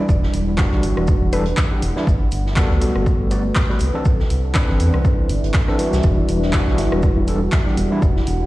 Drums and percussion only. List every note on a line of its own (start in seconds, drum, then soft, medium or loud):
0.09 kick loud
0.09 shaker medium
0.23 snare medium
0.34 open hi-hat loud
0.34 shaker medium
0.58 kick loud
0.58 snare loud
0.58 clap loud
0.58 shaker medium
0.71 snare soft
0.83 open hi-hat loud
0.83 shaker medium
0.97 cross-stick medium
1.07 kick loud
1.07 shaker medium
1.33 open hi-hat loud
1.33 shaker medium
1.46 closed hi-hat soft
1.57 kick loud
1.57 snare loud
1.57 clap loud
1.57 shaker medium
1.82 open hi-hat loud
1.82 shaker medium
1.97 snare soft
2.07 kick loud
2.07 shaker medium
2.31 open hi-hat loud
2.31 shaker medium
2.46 snare soft
2.56 kick loud
2.56 snare loud
2.56 clap loud
2.56 shaker medium
2.71 snare soft
2.81 snare soft
2.81 open hi-hat loud
2.81 shaker medium
2.96 cross-stick medium
3.06 kick loud
3.06 shaker medium
3.31 open hi-hat loud
3.31 shaker medium
3.55 kick loud
3.55 snare loud
3.55 clap loud
3.55 shaker medium
3.70 snare soft
3.79 open hi-hat loud
3.79 shaker medium
4.05 kick loud
4.05 shaker medium
4.20 snare medium
4.30 open hi-hat loud
4.30 shaker medium
4.55 kick loud
4.55 snare loud
4.55 clap loud
4.55 shaker medium
4.69 snare soft
4.80 open hi-hat loud
4.80 shaker medium
4.94 cross-stick medium
5.05 kick loud
5.05 shaker medium
5.29 open hi-hat loud
5.29 shaker medium
5.44 closed hi-hat soft
5.54 kick loud
5.54 snare medium
5.54 clap loud
5.54 shaker medium
5.68 cross-stick medium
5.68 snare soft
5.79 snare soft
5.79 open hi-hat loud
5.79 shaker medium
5.93 snare medium
5.93 shaker medium
6.03 kick loud
6.03 shaker medium
6.29 open hi-hat loud
6.29 shaker medium
6.42 snare soft
6.53 kick loud
6.53 snare loud
6.53 clap loud
6.53 shaker medium
6.68 snare soft
6.78 snare soft
6.78 open hi-hat medium
6.78 shaker medium
6.92 cross-stick medium
7.03 kick loud
7.03 shaker medium
7.27 open hi-hat loud
7.27 shaker medium
7.52 kick loud
7.52 snare loud
7.52 clap loud
7.52 shaker medium
7.67 snare soft
7.77 open hi-hat loud
7.77 shaker medium
8.02 kick loud
8.02 shaker medium
8.16 snare medium
8.27 open hi-hat loud
8.27 shaker medium